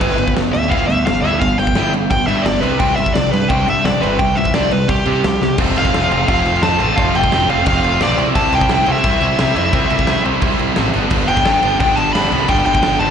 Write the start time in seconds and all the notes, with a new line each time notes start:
Already playing: B4
0.00 G1 G3 B3 E4, kick, crash
0.17 G1 G3 B3, crash
0.28 kick
0.34 G1 G3 B3, snare, crash
0.52 D2 G3 B3 E5, crash
0.68 G1 G3 B3 E4 F5, kick, crash
0.87 D2 G3 B3 E5, crash
1.06 G1 G3 B3 F5, snare, crash
1.22 D2 G3 B3 E4 E5, crash
1.40 G1 G3 B3 F5, kick, crash
1.58 G1 G3 B3 G5, crash
1.67 kick
1.74 G1 G3 B3 E4, snare, crash
1.93 G3 B3, crash
2.10 G1 G3 B3 G5, kick, crash
2.27 G2 G3 B3 E4 E5, crash
2.42 G1 G3 B3 D5, snare, crash
2.61 C2 C3 G3 C4 B4, crash
2.79 C2 C3 G3 C4 G5, kick, crash
2.96 C2 C3 G3 E5, crash
3.06 kick
3.13 C2 C3 G3 D5, snare, crash
3.32 G2 C3 G3 B4, crash
3.48 C2 C3 G3 C4 G5, kick, crash
3.67 G2 C3 G3 E5, crash
3.83 C2 C3 G3 D5, snare, crash
4.00 G1 C3 G3 C4 B4, crash
4.19 C2 C3 G3 G5, kick, crash
4.35 C2 C3 G3 E5, crash
4.45 kick
4.54 C2 C3 G3 C4 D5, snare, crash
4.71 C3 G3 B4, crash
4.88 C2 C3 G3 G4, kick, crash
5.06 C3 G3 C4, crash
5.24 C2 C3 G3, snare, crash
5.41 C2 C3 G3, snare
5.58 F1 F2 C3 F3 A3 C4 F4, kick, crash
5.76 F1 F5, crash
5.85 kick
5.93 F1 F2 C3 F3 A3 C4 F4, snare, crash
6.11 F1 F2 C3 F3 A3 C4 F4, crash
6.27 F1 F2 C3 F3 A3 C4 F4 F5, kick, crash
6.45 F1, crash
6.62 F2 C3 F3 A3 C4 F4 A5, snare, crash
6.79 A1 F2 C3 F3 A3 C4 F4, crash
6.96 F1 F2 C3 F3 A3 C4 F4 F5, kick, crash
7.15 F1 G5, crash
7.24 kick
7.32 F1 F2 C3 F3 A3 C4 F4, snare, crash
7.49 F1 F2 C3 F3 A3 C4 F4 F5, crash
7.65 F1 F2 C3 F3 A3 C4 F4 F5, kick, crash
7.84 F1, crash
8.00 B1 F2 C3 F3 A3 C4 F4 D5, snare, crash
8.16 C2 C3 G3 C4 E4, crash
8.33 C2 C3 G3 C4 E4 A5, kick, crash
8.52 C2 G5, crash
8.61 kick
8.69 C2 C3 G3 C4 E4, snare, crash
8.74 G5
8.86 C2 C3 G3 C4 E4, crash
8.92 E5
9.03 C2 C3 G3 C4 E4, kick, crash
9.21 C2, crash
9.37 C3 G3 C4 E4, snare, crash
9.55 F2 C3 G3 C4 E4 E5, crash
9.72 C2 C3 G3 C4 E4, kick, crash
9.90 C2, crash
9.99 kick
10.06 C2 C3 G3 C4 E4, snare, crash
10.23 C2 C3 G3 C4 E4, crash
10.40 C2 C3 G3 C4 E4, kick, crash
10.59 C2, crash
10.76 A1 C3 G3 C4 E4, snare, crash
10.93 G1 G2 D3 G3 B3 D4, crash
11.10 G1 G2 D3 G3 B3 D4, kick, crash
11.28 G1 G5, crash
11.37 kick
11.44 G1 G2 D3 G3 B3 D4, snare, crash
11.63 G1 G2 D3 G3 B3 D4, crash
11.80 G1 G2 D3 G3 B3 D4 G5, kick, crash
11.96 G1 A5, crash
12.13 G2 D3 G3 B3 D4 B5, snare, crash
12.31 C2 G2 D3 G3 B3 D4, crash
12.48 G1 G2 D3 G3 B3 D4 G5, kick, crash
12.66 G1 G5, crash
12.75 kick
12.82 G1 G2 D3 G3 B3 D4, snare, crash
12.99 G1 G2 D3 G3 B3 D4 A5, crash